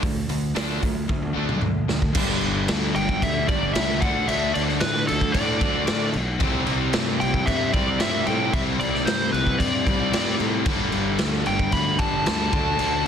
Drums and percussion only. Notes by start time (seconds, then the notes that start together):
0.03 kick, open hi-hat
0.29 open hi-hat
0.56 snare, open hi-hat
0.83 kick, open hi-hat
1.09 kick, high tom
1.23 high tom
1.49 mid tom
1.61 mid tom
1.89 snare
2.02 kick
2.15 kick, crash
2.41 crash
2.68 snare, crash
2.96 crash
3.09 kick
3.22 kick, crash
3.49 kick, crash
3.75 snare, crash
4.02 kick, crash
4.29 crash
4.55 crash
4.69 snare
4.80 snare, crash
4.95 snare
5.08 crash
5.21 kick
5.34 kick, crash
5.61 kick, crash
5.87 snare, crash
6.13 crash
6.40 kick, crash
6.67 crash
6.93 snare, crash
7.21 crash
7.34 kick
7.47 kick, crash
7.73 kick, crash
8.00 snare, crash
8.27 crash
8.53 kick, crash
8.81 crash
8.95 snare
9.07 snare, crash
9.21 snare
9.34 crash
9.47 kick
9.60 kick, crash
9.87 kick, crash
10.13 snare, crash
10.40 crash
10.66 kick, crash
10.92 crash
11.19 snare, crash
11.33 snare
11.46 crash
11.59 kick
11.72 kick, crash
11.99 kick, crash
12.26 snare, crash
12.53 kick, crash
12.79 crash